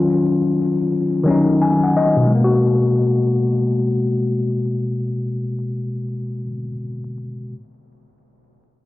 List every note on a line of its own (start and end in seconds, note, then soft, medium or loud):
0.00 0.79 D#3 medium
0.00 0.80 F#3 medium
0.00 0.81 C#4 medium
0.00 0.83 F4 medium
1.23 2.18 D#3 medium
1.23 2.19 F#3 medium
1.28 2.20 C#4 medium
1.28 2.22 D#4 medium
1.62 1.80 G#5 medium
1.83 1.96 F#5 medium
1.97 2.28 D#5 medium
2.16 6.42 B2 medium
2.25 6.47 G#3 medium
2.35 6.51 A#3 medium
2.44 6.56 F#4 medium